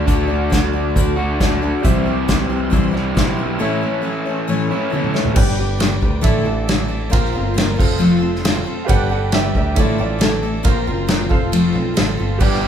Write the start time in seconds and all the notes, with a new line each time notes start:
Already playing: F#4 A4 D5 F#5 D6
0.07 D2 D3 A3 D4 F#4 D5, kick, closed hi-hat
0.27 D4 F#4 D5
0.50 D2 A3 D4 F#4 D5, kick, snare, closed hi-hat
0.73 D4 F#4 D5
0.96 D2 D3 A3 D4 F#4 D5, kick, closed hi-hat
1.17 D3 A3 D4 F#4 D5
1.38 D2 D3 A3 D4 D5, kick, snare, closed hi-hat
1.42 F#4 D5
1.62 D2 D4 F#4 D5
1.82 C2 C3 E3 G3 C4 E4 G4 C5 E5 G5 E6, kick, closed hi-hat
2.06 G3 C4 E4 C5
2.28 C2 G3 C4 E4 C5, kick, snare, closed hi-hat
2.50 G3 C4 E4 C5
2.70 C2 C3 E3 G3 C4 E4 C5, kick, closed hi-hat
2.91 E3 G3 C4 E4 C5
2.96 C3, snare
3.15 B1 C3 E3 G3 C4 E4 C5, kick, snare, closed hi-hat
3.37 G3 C4 E4 C5
3.59 A2 E3 A3 C#4 E4 A4 C#5 E5 A5
3.81 A3 C#4 E4 C#5
4.02 A3 C#4 E4 C#5
4.25 A3 C#4 E4 C#5
4.48 A2 E3 A3 C#4 E4 C#5
4.71 A2 E3 A3 C#4 E4 C#5
4.90 A2 E3 A3 C#4 E4 C#5, high tom
5.04 mid tom
5.14 A3 C#4 E4 A4 C#5 E5, snare
5.25 floor tom
5.34 G1 G3 D4 G4 B4 D5 G5 D6, kick, crash
5.47 snare
5.57 D4 G4 B4
5.78 G3 D4 G4 B4, snare, ride bell
6.01 D2 D4 G4 B4, kick
6.21 A1 A2 D3 A3 D4 E4 A4 D5 E5, kick, ride bell
6.43 A1 A3 D4 E4 A4
6.68 A3 D4 E4 A4, snare, ride bell
6.88 A3 D4 E4 A4
7.10 A#1 A#3 C4 F4 A#4 C5 F5 C6, kick, ride bell
7.14 A#4 F5
7.25 snare
7.33 G1 C4 F4 A#4
7.54 A#3 C4 F4 A#4, ride bell
7.58 snare
7.76 C4 F4 A4 C5, kick
7.80 F1 F5, crash
7.98 F3 A3 C4 F4 A4
8.20 C4 F4 A4
8.35 snare
8.43 A3 C4 F4, snare, ride bell
8.47 A4
8.64 C4 F4 A4
8.85 G3 D4 G4 B4 D5 F5 G5 D6
8.89 G1 G4 A4 B4 F#5, kick, ride bell
9.09 D4 G4 A4 B4 F#5
9.32 G3 D4 G4 B4 E5, snare, ride bell
9.55 D2 D4 G4 B4 E5, kick
9.75 A1 A2 D3 A3 D4 E4 F4 A4 D5 E5, kick, ride bell
9.79 A4 D5 E5
9.98 A1 A3 D4 E4 F4 A4 D5
10.19 A3 D4 E4 A4, snare, ride bell
10.43 A3 D4 E4 A4
10.63 A#1 A#3 C4 F4 A#4 C5 F5 C6, kick, ride bell
10.87 F#1 C4 F4 A#4
11.07 A#3 C4 F4 A#4, snare, ride bell
11.29 F1 C4 F4 A4 C5 F5, kick
11.52 F3 A3 C4 F4 A4, ride bell
11.73 B1 C4 F4 A4
11.94 A1 A3 C4 F4 A4, snare, ride bell
12.17 G1 C4 F4 A4
12.38 G1 G2 D3 G3 B3 D4 G4 B4 D5 G5 D6, kick, crash
12.53 snare
12.61 D4 G4 B4